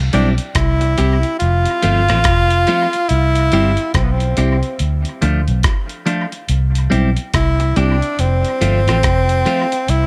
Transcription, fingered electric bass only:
0.00 0.10 C2 loud
0.14 0.38 B1 medium
0.56 0.95 C2 loud
0.99 1.23 C2 medium
1.42 1.65 F1 medium
1.84 2.07 G1 medium
2.10 2.24 A1 medium
2.26 2.65 F1 medium
3.11 3.49 C2 medium
3.52 3.76 G1 medium
3.95 4.34 B1 medium
4.38 4.62 C2 medium
4.80 5.04 D2 loud
5.23 5.46 D2 medium
5.48 5.63 B1 medium
6.49 6.88 C2 loud
6.92 7.16 B1 medium
7.35 7.73 C2 loud
7.77 8.01 C2 medium
8.19 8.43 F1 medium
8.62 8.85 G1 medium
8.87 9.02 A1 medium
9.05 9.43 F1 medium
9.89 10.07 C2 loud

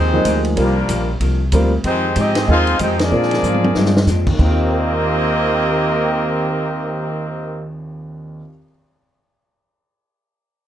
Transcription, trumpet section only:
0.00 0.43 G#3 medium
0.00 0.42 D#4 medium
0.00 0.42 G4 medium
0.00 0.42 C5 loud
0.60 1.18 G3 medium
0.60 1.18 D4 medium
0.60 1.18 F4 medium
0.60 1.18 A#4 medium
1.87 2.15 G#3 medium
1.87 2.15 D#4 medium
1.87 2.15 G4 medium
1.87 2.16 C5 loud
2.19 2.50 C4 medium
2.19 2.50 G4 medium
2.19 2.49 G#4 medium
2.19 2.49 D#5 loud
2.50 2.79 D#4 loud
2.50 2.79 G#4 loud
2.50 2.79 C5 loud
2.50 2.79 F5 loud
2.83 3.00 G#3 medium
2.83 3.00 D#4 medium
2.83 3.00 G4 medium
2.83 3.00 C5 medium
3.03 4.10 A#3 medium
3.03 4.10 F4 medium
3.03 4.10 G#4 medium
3.03 4.09 D5 loud
4.42 7.72 C4 medium
4.42 7.72 G4 medium
4.42 7.72 A#4 medium
4.42 7.72 D#5 loud

